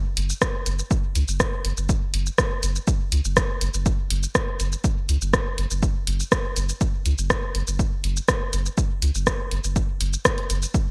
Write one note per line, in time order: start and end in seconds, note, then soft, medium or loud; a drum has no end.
0.17 0.33 F#1 loud
0.17 closed hi-hat medium
0.30 shaker soft
0.42 kick loud
0.42 cross-stick medium
0.42 shaker medium
0.66 0.82 F#1 medium
0.66 closed hi-hat medium
0.66 shaker soft
0.79 shaker soft
0.91 kick loud
0.91 shaker soft
1.15 1.23 C#2 loud
1.15 closed hi-hat medium
1.15 shaker soft
1.28 1.43 F#1 medium
1.28 shaker soft
1.40 kick loud
1.40 cross-stick medium
1.40 shaker medium
1.65 1.73 F#1 medium
1.65 closed hi-hat medium
1.77 1.92 F#1 medium
1.77 shaker soft
1.89 kick loud
1.89 shaker soft
2.14 2.29 F#1 loud
2.14 closed hi-hat medium
2.26 shaker soft
2.38 kick loud
2.38 cross-stick medium
2.38 shaker soft
2.63 2.79 F#1 medium
2.63 closed hi-hat medium
2.63 shaker soft
2.76 shaker soft
2.88 kick loud
2.88 shaker soft
3.12 3.20 C#2 loud
3.12 closed hi-hat medium
3.12 shaker soft
3.25 3.40 F#1 medium
3.25 shaker soft
3.37 kick loud
3.37 cross-stick medium
3.37 shaker soft
3.61 3.69 F#1 medium
3.61 closed hi-hat medium
3.61 shaker soft
3.74 3.89 F#1 medium
3.74 shaker soft
3.86 kick loud
3.86 shaker soft
4.10 4.26 F#1 loud
4.10 closed hi-hat medium
4.23 shaker soft
4.35 kick loud
4.35 cross-stick medium
4.35 shaker soft
4.60 4.75 F#1 medium
4.60 closed hi-hat medium
4.60 shaker soft
4.72 shaker soft
4.84 kick loud
4.84 shaker soft
5.09 5.17 C#2 loud
5.09 closed hi-hat medium
5.09 shaker soft
5.22 5.37 F#1 medium
5.22 shaker soft
5.33 kick loud
5.33 cross-stick medium
5.33 shaker soft
5.58 5.66 F#1 medium
5.58 closed hi-hat medium
5.71 5.86 F#1 medium
5.71 shaker soft
5.83 kick loud
5.83 shaker soft
6.07 6.23 F#1 loud
6.07 closed hi-hat medium
6.20 shaker soft
6.32 kick loud
6.32 cross-stick medium
6.32 shaker soft
6.56 6.72 F#1 medium
6.56 closed hi-hat medium
6.56 shaker soft
6.69 shaker soft
6.81 kick loud
6.81 shaker soft
7.06 7.14 C#2 loud
7.06 closed hi-hat medium
7.06 shaker soft
7.18 7.33 F#1 medium
7.18 shaker soft
7.30 kick loud
7.30 cross-stick medium
7.30 shaker soft
7.55 7.63 F#1 medium
7.55 closed hi-hat medium
7.68 7.83 F#1 medium
7.68 shaker soft
7.79 kick loud
7.79 shaker soft
8.04 8.20 F#1 loud
8.04 closed hi-hat medium
8.17 shaker soft
8.28 kick loud
8.28 cross-stick medium
8.28 shaker soft
8.53 8.69 F#1 medium
8.53 closed hi-hat medium
8.53 shaker soft
8.66 shaker soft
8.78 kick loud
8.78 shaker soft
9.02 9.10 C#2 loud
9.02 closed hi-hat medium
9.02 shaker soft
9.15 9.30 F#1 medium
9.15 shaker soft
9.27 kick loud
9.27 cross-stick medium
9.27 shaker medium
9.51 9.59 F#1 medium
9.51 closed hi-hat medium
9.64 9.79 F#1 medium
9.64 shaker soft
9.76 kick loud
9.76 shaker soft
10.01 10.16 F#1 loud
10.01 closed hi-hat medium
10.01 shaker soft
10.13 shaker soft
10.25 kick loud
10.25 cross-stick medium
10.25 shaker medium
10.38 closed hi-hat soft
10.50 10.66 F#1 medium
10.50 closed hi-hat medium
10.50 shaker soft
10.63 shaker soft
10.74 kick loud
10.74 shaker soft